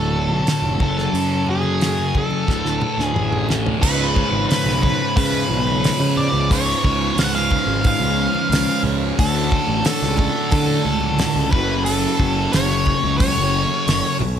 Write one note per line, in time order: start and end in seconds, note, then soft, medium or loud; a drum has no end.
0.00 0.29 D1 medium
0.00 0.78 D2 medium
0.00 0.79 A2 medium
0.00 0.79 D3 medium
0.00 2.45 F#3 medium
0.00 0.79 D4 medium
0.00 0.81 A4 medium
0.00 0.78 C#5 medium
0.13 high conga medium
0.27 0.42 B1 medium
0.47 snare loud
0.47 open hi-hat soft
0.62 0.76 F1 medium
0.78 1.07 F#1 medium
0.78 2.45 F#2 medium
0.78 2.46 C#3 medium
0.78 2.47 F#3 medium
0.78 2.46 A3 medium
0.78 2.47 G#5 medium
0.78 kick medium
0.78 low conga medium
0.83 1.50 A4 medium
0.98 snare soft
1.13 2.20 F#2 medium
1.13 open hi-hat soft
1.46 2.17 G#4 medium
1.46 low conga medium
1.63 high conga medium
1.81 snare medium
1.81 open hi-hat soft
1.98 high conga medium
2.15 3.02 A4 medium
2.15 kick medium
2.15 high conga medium
2.15 low conga medium
2.31 high conga medium
2.46 2.61 D1 medium
2.46 3.80 D2 medium
2.46 3.80 A2 medium
2.46 3.81 D3 medium
2.46 3.80 F#3 medium
2.46 3.81 D4 medium
2.46 3.81 B4 medium
2.46 kick medium
2.46 snare medium
2.46 low conga medium
2.65 2.78 D1 medium
2.65 snare soft
2.81 mid tom medium
2.81 high conga medium
2.98 3.11 D2 medium
2.98 3.47 G#4 medium
2.98 snare medium
3.14 3.68 A1 medium
3.14 mid tom medium
3.33 mid tom medium
3.49 snare medium
3.49 low conga medium
3.67 floor tom medium
3.82 6.48 C#2 medium
3.82 4.22 C#2 loud
3.82 6.49 G#2 medium
3.82 6.49 C#3 medium
3.82 9.14 F3 medium
3.82 11.48 C#4 medium
3.82 4.45 B4 medium
3.82 9.14 B4 medium
3.82 kick loud
3.82 crash loud
4.16 kick medium
4.16 high conga medium
4.32 4.45 G#1 medium
4.49 4.82 B4 medium
4.49 snare loud
4.49 open hi-hat medium
4.65 4.92 B1 medium
4.65 snare soft
4.83 5.16 B4 medium
4.83 kick medium
4.83 high conga medium
4.83 low conga medium
5.16 5.43 C#3 medium
5.16 6.20 B4 medium
5.16 kick loud
5.16 open hi-hat medium
5.16 high conga medium
5.33 low conga medium
5.49 5.89 B1 medium
5.67 high conga medium
5.84 snare loud
5.84 open hi-hat medium
5.99 6.26 C#3 medium
5.99 high conga medium
6.17 6.52 D5 medium
6.17 low conga medium
6.33 6.73 C#2 medium
6.50 9.16 C#2 medium
6.50 9.17 G#2 medium
6.50 9.17 C#3 loud
6.50 7.20 C#5 loud
6.50 kick loud
6.50 open hi-hat medium
6.83 7.11 C#2 medium
6.83 kick medium
6.83 high conga medium
7.16 7.56 C#2 medium
7.16 7.24 F5 loud
7.16 snare loud
7.16 open hi-hat medium
7.24 7.31 F#5 medium
7.35 7.86 F5 loud
7.35 snare soft
7.50 kick medium
7.50 high conga medium
7.50 low conga medium
7.67 7.93 G#1 medium
7.84 8.82 F5 loud
7.84 kick loud
7.84 open hi-hat medium
7.84 high conga medium
8.00 8.27 C#2 medium
8.00 low conga medium
8.35 high conga medium
8.50 8.64 C#2 medium
8.50 snare loud
8.50 open hi-hat medium
8.67 high conga medium
8.83 9.11 C#2 medium
8.83 low conga medium
9.18 11.50 D2 medium
9.18 9.58 D2 medium
9.18 11.51 A2 loud
9.18 11.52 D3 loud
9.18 11.51 D4 medium
9.18 11.52 F#4 medium
9.18 9.85 A4 loud
9.18 kick loud
9.18 open hi-hat medium
9.51 kick medium
9.51 high conga medium
9.68 9.81 A1 medium
9.85 10.17 A4 medium
9.85 snare loud
9.85 open hi-hat medium
10.02 10.29 C#2 medium
10.02 snare soft
10.17 10.50 A4 medium
10.17 kick medium
10.17 high conga medium
10.17 low conga medium
10.51 10.79 D3 medium
10.51 11.51 A4 medium
10.51 kick loud
10.51 open hi-hat soft
10.51 high conga medium
10.66 low conga medium
10.85 11.25 C#2 medium
11.00 high conga medium
11.19 snare loud
11.19 open hi-hat medium
11.34 11.49 C#2 medium
11.34 high conga medium
11.50 12.06 F#1 medium
11.50 14.19 F#2 medium
11.50 14.19 C#3 medium
11.50 14.39 F#3 medium
11.50 14.20 F#3 medium
11.50 14.39 A3 medium
11.50 11.84 B4 medium
11.50 14.39 G#5 medium
11.50 kick loud
11.50 low conga medium
11.85 12.55 A4 loud
11.85 open hi-hat medium
12.19 12.46 F#1 loud
12.19 kick medium
12.19 high conga medium
12.52 12.93 F#1 medium
12.52 13.17 C#5 loud
12.52 snare loud
12.52 open hi-hat medium
12.71 snare soft
12.86 kick medium
12.86 high conga medium
12.86 low conga medium
13.04 13.30 C#2 medium
13.18 14.16 C#5 medium
13.18 kick loud
13.18 open hi-hat medium
13.18 high conga medium
13.35 13.64 F#1 medium
13.35 low conga medium
13.68 high conga medium
13.87 14.01 F#1 medium
13.87 snare loud
13.87 open hi-hat medium
13.87 high conga medium
14.03 high conga medium
14.20 14.39 B1 medium
14.20 low conga medium